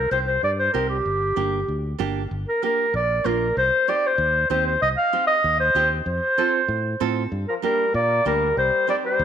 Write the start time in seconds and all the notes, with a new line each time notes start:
Already playing: A#4
0.11 C2 C4 D#4 G4 C5
0.27 C5
0.43 G2 D5
0.59 C5
0.73 C2 C4 D#4 G4 A#4
0.89 G4
1.05 G1
1.36 G1 A#3 D4 G4
1.68 D2
1.99 G1 A#3 D4 G4
2.31 G1
2.48 A#4
2.62 A#3 D4 G4 A#4
2.94 A#1 D5
3.24 A#1 A#3 D4 F4 A#4
3.57 C2 C5
3.88 C4 D#4 G4 D5
4.06 C5
4.18 D#2
4.50 D#2 C4 D#4 G4 C5
4.67 C5
4.82 C2 D#5
4.97 F5
5.13 C4 D#4 G4
5.27 D#5
5.44 D#2
5.60 C5
5.75 D#2 C4 D#4 G4
6.06 F2 C5
6.38 C4 F4 A4
6.68 A2
7.00 A2 C4 F4 A4
7.32 G2
7.48 F3 A#4
7.62 G3 A#3 D4 G4 A#4
7.94 A#2 A#3 D5
8.25 D2 G3 A#3 D4 G4 A#4
8.56 C2 G3 C5
8.87 G3 C4 D#4 G4 D5
9.02 G3 C5
9.19 D#2